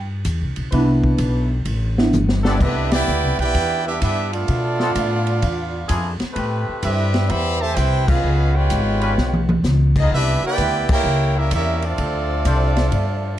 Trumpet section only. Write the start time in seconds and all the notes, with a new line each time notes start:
2.46 B3 E4 G4 D5
2.62 D4 G4 B4 E5
2.92 E4 B4 D5 G5
3.40 E4 B4 D5 G5
3.87 D4 G4 B4 E5
4.03 D4 G4 B4 E5
4.33 B3 F4 A4 D5
6.84 C4 G4 B4 E5
7.29 G4 C5 E5 B5
7.60 G4 C5 E5 A5
7.75 E4 B4 C5 G5
8.06 C#4 G#4 B4 F5
8.54 F4 B4 C#5 G5
10.00 B3 F4 G#4 D#5
10.15 D4 G4 B4 E5
10.46 E4 B4 D5 G5
10.93 E4 A#4 C#5 G5
11.37 C#4 G4 A#4 E5
11.53 C#4 G4 A#4 E5
11.84 C4 F4 A4 D5